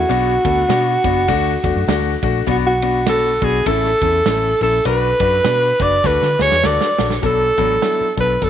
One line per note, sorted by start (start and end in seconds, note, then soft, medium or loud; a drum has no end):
0.00 2.24 F#4 loud
0.09 0.36 B1 loud
0.09 0.32 B3 medium
0.09 0.32 D4 medium
0.09 0.32 F#4 loud
0.09 ride medium
0.44 0.64 D2 medium
0.44 0.60 B3 medium
0.44 0.60 D4 medium
0.44 0.60 A4 medium
0.44 kick loud
0.44 ride medium
0.69 0.96 B2 loud
0.69 0.91 B3 medium
0.69 0.91 D4 medium
0.69 0.92 F#4 loud
0.69 snare loud
0.69 ride medium
1.04 1.30 F#1 medium
1.04 1.20 B3 medium
1.04 1.20 D4 medium
1.04 1.20 F#4 loud
1.04 kick loud
1.04 ride medium
1.28 1.55 D2 loud
1.28 1.51 A3 loud
1.28 1.51 D4 loud
1.28 1.51 F#4 loud
1.28 kick medium
1.28 ride medium
1.64 1.73 E2 medium
1.64 1.79 A3 medium
1.64 1.79 D4 medium
1.64 1.79 F#4 medium
1.64 kick medium
1.64 ride medium
1.75 1.85 F#2 medium
1.87 2.14 D2 loud
1.87 2.10 A3 medium
1.87 2.10 D4 medium
1.87 2.11 F#4 loud
1.87 snare loud
1.87 ride medium
2.23 2.42 A#1 medium
2.23 2.38 A3 medium
2.23 2.39 D4 medium
2.23 2.39 F#4 loud
2.23 kick loud
2.23 ride medium
2.47 3.38 B1 loud
2.47 2.69 B3 loud
2.47 2.69 D4 medium
2.47 2.70 F#4 loud
2.47 2.57 F#4 medium
2.47 kick loud
2.47 ride medium
2.67 3.05 F#4 medium
2.82 2.98 B3 medium
2.82 2.98 D4 medium
2.82 2.98 F#4 medium
2.82 ride medium
3.06 3.29 B3 medium
3.06 3.29 D4 medium
3.06 3.29 F#4 medium
3.06 3.46 A4 loud
3.06 snare loud
3.06 ride medium
3.42 3.61 B1 loud
3.42 3.57 B3 medium
3.42 3.57 D4 medium
3.42 3.58 F#4 medium
3.42 3.68 G#4 medium
3.42 kick medium
3.42 ride medium
3.66 3.93 A1 loud
3.66 3.88 C#4 medium
3.66 3.89 E4 medium
3.66 3.89 A4 loud
3.66 4.58 A4 loud
3.66 kick medium
3.66 ride medium
3.84 snare soft
4.02 4.20 E2 medium
4.02 4.17 C#4 medium
4.02 4.17 E4 medium
4.02 4.17 A4 medium
4.02 kick medium
4.02 ride medium
4.26 4.52 A1 loud
4.26 4.48 C#4 medium
4.26 4.48 E4 medium
4.26 4.49 A4 medium
4.26 snare loud
4.26 ride medium
4.61 4.79 A#1 medium
4.61 4.76 C#4 medium
4.61 4.76 E4 medium
4.61 4.77 A4 medium
4.61 4.84 A4 medium
4.61 open hi-hat medium
4.61 ride medium
4.85 5.12 B1 loud
4.85 5.07 D4 loud
4.85 5.08 F#4 medium
4.85 5.08 B4 loud
4.85 5.84 B4 loud
4.85 hi-hat pedal medium
4.85 ride medium
5.20 5.39 F#2 medium
5.20 5.36 D4 medium
5.20 5.36 F#4 medium
5.20 5.36 B4 medium
5.20 kick medium
5.20 ride medium
5.44 5.71 B2 loud
5.44 5.67 D4 medium
5.44 5.67 F#4 medium
5.44 5.67 B4 medium
5.44 snare loud
5.44 ride medium
5.80 5.98 F#1 loud
5.80 5.95 D4 medium
5.80 5.95 F#4 medium
5.80 5.95 B4 medium
5.80 6.08 D5 loud
5.80 kick loud
5.80 ride medium
6.04 6.18 D2 loud
6.04 6.26 D4 medium
6.04 6.26 F#4 medium
6.04 6.26 A4 medium
6.04 6.44 B4 loud
6.04 kick medium
6.04 snare medium
6.22 6.35 D3 loud
6.22 snare medium
6.39 6.49 D2 loud
6.39 6.55 D4 medium
6.39 6.55 F#4 medium
6.39 6.55 G#4 medium
6.39 6.68 C#5 loud
6.39 snare medium
6.51 6.61 E2 medium
6.51 snare medium
6.63 6.77 D2 loud
6.63 6.86 D4 medium
6.63 6.86 F#4 medium
6.63 6.86 A4 medium
6.63 7.12 D5 loud
6.63 snare medium
6.81 snare medium
6.98 7.17 A#1 medium
6.98 7.14 D4 medium
6.98 7.14 F#4 medium
6.98 7.14 A4 medium
6.98 snare loud
7.10 snare medium
7.22 7.50 B1 medium
7.22 7.45 F#3 medium
7.22 7.45 B3 medium
7.22 7.45 D4 medium
7.22 7.45 A4 loud
7.22 8.15 A4 loud
7.22 kick loud
7.22 closed hi-hat medium
7.57 7.76 A1 medium
7.57 7.73 F#3 medium
7.57 7.73 B3 medium
7.57 7.73 D4 medium
7.57 7.74 A4 loud
7.57 kick medium
7.57 closed hi-hat medium
7.82 8.04 F#3 medium
7.82 8.04 B3 medium
7.82 8.04 D4 medium
7.82 8.04 E4 medium
7.82 snare loud
7.82 closed hi-hat loud
8.01 muted fingered electric bass stroke soft
8.17 8.36 B1 medium
8.17 8.33 F#3 medium
8.17 8.33 B3 medium
8.17 8.33 D4 medium
8.17 8.33 A4 medium
8.17 8.45 B4 loud
8.17 kick medium
8.17 closed hi-hat medium
8.42 8.50 F#1 medium
8.42 8.50 F#3 medium
8.42 8.50 B3 medium
8.42 8.50 D4 medium
8.42 8.50 A4 medium
8.42 8.50 A4 loud
8.42 kick medium
8.42 closed hi-hat loud